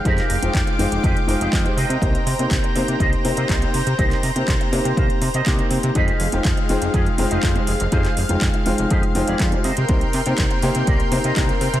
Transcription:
<<
  \new Staff \with { instrumentName = "Analog synth pad" } { \time 4/4 \key f \dorian \tempo 4 = 122 <aes f'' g'' d'''>2.~ <aes f'' g'' d'''>8 <c'' bes''>8~ | <c'' bes''>1~ | <c'' bes''>1 | <aes f''>1~ |
<aes f''>2.~ <aes f''>8 <bes' g'' c'''>8~ | <bes' g'' c'''>1 | }
  \new Staff \with { instrumentName = "Clean electric guitar" } { \time 4/4 \key f \dorian <g' aes' bes'>8 r4. <g' aes' ees''>16 r8 <g' aes' ees''>8. <bes' c'' ees''>8~ | <bes' c'' ees''>4 r4 <bes' c'' ees''>16 r8 <bes' c'' ees''>8. r8 | <bes' c'' ees''>8 r4. <bes' c'' f''>16 r8 <bes' c'' ees''>8. r8 | <g' aes' ees''>8 r4. <g' aes' ees''>16 r8 <g' aes' ees''>8. r8 |
<g' aes' ees''>8 r4. <g' aes' ees''>16 r8 <g' aes' d''>8. <bes' c'' ees''>8~ | <bes' c'' ees''>4 r4 <bes' c'' d''>16 r8 <bes' c'' ees''>8. r8 | }
  \new Staff \with { instrumentName = "Grand piano" } { \time 4/4 \key f \dorian <aes ees' f' g' c''>16 r8 <aes ees' f' c'' g''>8. <aes ees' f' c'' g''>4 <aes ees' f' c'' g''>8. <aes ees' f' g' c''>16 r8 | <bes c' ees' g' c''>16 r8 <bes c' ees' g' c''>8. <bes c' ees' g' c''>4 <bes c' ees' g' c''>8. <bes c' ees' g' c''>16 r8 | <bes c' ees' g' c''>16 r8 <bes c' ees' g' c''>8. <bes c' ees' g' c''>4 r8 <bes c' ees' g' d'''>4 | <aes ees' f' g' c''>16 r8 <aes ees' f' c'' g''>8. <aes ees' f' c'' g''>4 <aes ees' f' c'' g''>8. <aes ees' f' g' c''>16 r8 |
<aes ees' f' g' c''>16 r8 <aes ees' f' c'' g''>8. <aes ees' f' c'' g''>4 <aes ees' f' c'' g''>8. <aes ees' f' g' c''>16 r8 | <bes c' ees' g' c''>16 r8 <bes c' ees' g' c''>8. <bes c' ees' g' c''>4 <bes c' ees' g' c''>8. <bes c' ees' g' c''>16 r8 | }
  \new Staff \with { instrumentName = "Analog synth bass" } { \clef bass \time 4/4 \key f \dorian f,16 r16 f,,16 f,,16 f,16 r16 f,,16 f,,16 f,16 f,,16 f,,16 f,,16 f,16 r16 c16 c16 | c,16 r16 c16 c16 c,16 r16 c16 c16 c,16 r16 c16 c16 c,16 r16 c16 c16 | c,16 r16 c16 c16 c,16 r16 c16 c16 c,16 c16 c16 c16 c,16 r16 c16 c16 | f,16 r16 f,,16 f,,16 f,16 r16 f,,16 f,,16 f,16 r16 f,,16 f,,16 f,16 r16 f,,16 f,,16 |
f,16 r16 f,,16 f,,16 f,16 r16 f,,16 f,,16 f,16 f,,16 f,,16 f,,16 f,16 r16 c16 c16 | c,16 r16 c16 c16 c,16 r16 c16 c16 c,16 r16 c16 c16 c,16 r16 c16 c16 | }
  \new DrumStaff \with { instrumentName = "Drums" } \drummode { \time 4/4 <hh bd>16 <hc hh>16 hho16 hh16 <hc hh bd>16 hh16 hho16 hh16 <hh bd>16 hh16 hho16 hh16 <hc hh bd>16 hh16 hho16 hh16 | <hh bd>16 hh16 hho16 hh16 <hc hh bd>16 hh16 hho16 hh16 <hh bd>16 hh16 hho16 hh16 <hc hh bd>16 hh16 hho16 hh16 | <hh bd>16 <hc hh>16 hho16 hh16 <hc hh bd>16 hh16 hho16 hh16 <hh bd>16 hh16 hho16 hh16 <hc hh bd>16 hh16 hho16 hh16 | <hh bd>16 hh16 hho16 hh16 <hc hh bd>16 hh16 hho16 hh16 <hh bd>16 hh16 hho16 hh16 <hc hh bd>16 hh16 hho16 hh16 |
<hh bd>16 <hc hh>16 hho16 hh16 <hc hh bd>16 hh16 hho16 hh16 <hh bd>16 hh16 hho16 hh16 <hc hh bd>16 hh16 hho16 hh16 | <hh bd>16 hh16 hho16 hh16 <hc hh bd>16 hh16 hho16 hh16 <hh bd>16 hh16 hho16 hh16 <hc hh bd>16 hh16 hho16 hh16 | }
>>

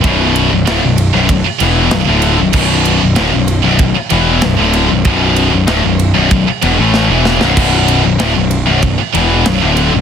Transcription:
<<
  \new Staff \with { instrumentName = "Distorted electric guitar" } { \clef bass \time 4/4 \key b \minor \tempo 4 = 96 <b,, fis, b,>8. <b,, fis,>16 <d, a,>16 <b,, fis,>8 <b,, fis,>16 <b,, fis,>16 r16 <e, b, e>8 <b,, fis,>16 <d, a, d>8 <b,, fis,>16 | <b,, fis, b,>8. <b,, fis,>16 <d, a,>16 <b,, fis,>8 <b,, fis,>16 <b,, fis,>16 r16 <e, b, e>8 <b,, fis,>16 <d, a, d>8 <b,, fis,>16 | <b,, fis, b,>8. <b,, fis,>16 <d, a,>16 <b,, fis,>8 <b,, fis,>16 <b,, fis,>16 r16 <e, b,>16 <a, e a>8 <e, b, e>8 <b,, fis,>16 | <b,, fis, b,>8. <b,, fis,>16 <d, a,>16 <b,, fis,>8 <b,, fis,>16 <b,, fis,>16 r16 <e, b, e>8 <b,, fis,>16 <d, a, d>8 <b,, fis,>16 | }
  \new Staff \with { instrumentName = "Distorted electric guitar" } { \clef bass \time 4/4 \key b \minor <b,, fis, b,>8. <b,, fis,>16 <d, a,>16 <b,, fis,>8 <b,, fis,>16 <b,, fis,>16 r16 <e, b, e>8 <b,, fis,>16 <d, a, d>8 <b,, fis,>16 | <b,, fis, b,>8. <b,, fis,>16 <d, a,>16 <b,, fis,>8 <b,, fis,>16 <b,, fis,>16 r16 <e, b, e>8 <b,, fis,>16 <d, a, d>8 <b,, fis,>16 | <b,, fis, b,>8. <b,, fis,>16 <d, a,>16 <b,, fis,>8 <b,, fis,>16 <b,, fis,>16 r16 <e, b,>16 <a, e a>8 <e, b, e>8 <b,, fis,>16 | <b,, fis, b,>8. <b,, fis,>16 <d, a,>16 <b,, fis,>8 <b,, fis,>16 <b,, fis,>16 r16 <e, b, e>8 <b,, fis,>16 <d, a, d>8 <b,, fis,>16 | }
  \new Staff \with { instrumentName = "Picked electric bass" } { \clef bass \time 4/4 \key b \minor b,,,8. b,,,16 d,,16 b,,,8 b,,,16 b,,,16 r16 e,,8 b,,,16 d,,8 b,,,16 | b,,,8. b,,,16 d,,16 b,,,8 b,,,16 b,,,16 r16 e,,8 b,,,16 d,,8 b,,,16 | b,,,8. b,,,16 d,,16 b,,,8 b,,,16 b,,,16 r16 e,,16 a,,8 e,,8 b,,,16 | b,,,8. b,,,16 d,,16 b,,,8 b,,,16 b,,,16 r16 e,,8 b,,,16 d,,8 b,,,16 | }
  \new DrumStaff \with { instrumentName = "Drums" } \drummode { \time 4/4 <bd cymr>8 cymr8 <cymr sn>8 cymr8 <bd cymr>8 cymr8 <cymr sn>8 cymr8 | <cymc bd>8 cymr8 <cymr sn>8 cymr8 <bd cymr>8 cymr8 <cymr sn>8 cymr8 | <bd cymr>8 cymr8 <cymr sn>8 cymr8 <bd cymr>8 cymr8 sn8 sn16 sn16 | <cymc bd>8 cymr8 <cymr sn>8 cymr8 <bd cymr>8 cymr8 <cymr sn>8 cymr8 | }
>>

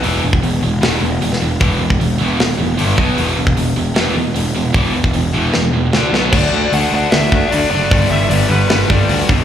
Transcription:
<<
  \new Staff \with { instrumentName = "Lead electric guitar" } { \time 4/4 \key e \minor \tempo 4 = 152 r1 | r1 | r1 | r1 |
d''4 fis''8 fis''8 e''4 d''8 d''8~ | d''8 e''8 d''8 b'8 b'8 d''4 r8 | }
  \new Staff \with { instrumentName = "Distorted electric guitar" } { \clef bass \time 4/4 \key e \minor <e, b, e>8 <e, b,>8 <e, b,>8 <e, b,>8 <e, b, e>8 <e, b,>8 <e, b,>8 <e, b,>8 | <e, b, e>8 <e, b,>8 <e, b,>8 <e, b, e>8 <e, b,>8 <e, b,>8 <g, d g>8 <b, fis b>8 | <e, b, e>8 <e, b,>8 <e, b,>8 <e, b,>8 <e, b, e>8 <e, b,>8 <e, b,>8 <e, b,>8 | <e, b, e>8 <e, b,>8 <e, b,>8 <e, b, e>8 <e, b,>8 <e, b,>8 <d a d'>8 <b, fis b>8 |
r1 | r1 | }
  \new Staff \with { instrumentName = "Overdriven electric guitar" } { \clef bass \time 4/4 \key e \minor <e, b, e>8 <e, b,>8 <e, b,>8 <e, b,>8 <e, b, e>8 <e, b,>8 <e, b,>8 <e, b,>8 | <e, b, e>8 <e, b,>8 <e, b,>8 <e, b, e>8 <e, b,>8 <e, b,>8 <g, d g>8 <b, fis b>8 | <e, b, e>8 <e, b,>8 <e, b,>8 <e, b,>8 <e, b, e>8 <e, b,>8 <e, b,>8 <e, b,>8 | <e, b, e>8 <e, b,>8 <e, b,>8 <e, b, e>8 <e, b,>8 <e, b,>8 <d a d'>8 <b, fis b>8 |
<d a d'>8 <d a d'>8 <d a d'>8 <d a d'>8 <d a d'>8 <d a d'>8 <d a d'>8 <d a d'>8 | <g, d g>8 <g, d g>8 <g, d g>8 <g, d g>8 <g, d g>8 <g, d g>8 <g, d g>8 <e, b, e>8 | }
  \new Staff \with { instrumentName = "Picked electric bass" } { \clef bass \time 4/4 \key e \minor e,,8 e,,8 e,,8 e,,8 e,,8 e,,8 e,,8 e,,8 | e,,8 e,,8 e,,8 e,,8 e,,8 e,,8 g,,8 b,,8 | e,,8 e,,8 e,,8 e,,8 e,,8 e,,8 e,,8 e,,8 | e,,8 e,,8 e,,8 e,,8 e,,8 e,,8 d,8 b,,8 |
d,8 d,8 d,8 d,8 d,8 d,8 d,8 fis,,8 | g,,8 g,,8 g,,8 g,,8 g,,8 g,,8 d,8 e,,8 | }
  \new DrumStaff \with { instrumentName = "Drums" } \drummode { \time 4/4 hho8. bd16 hho4 <hho sn>4 hho16 sn8. | <hho bd>8. bd16 hho4 <hho sn>4 hho8 bd8 | hho8. bd16 hho4 <hho sn>4 hho4 | <hho bd>8. bd16 hho4 sn4 sn8 sn8 |
<cymc bd>4 hho4 <hho sn>8 bd8 hho4 | <hho bd>4 hho4 <hho sn>8 bd8 hho8 bd8 | }
>>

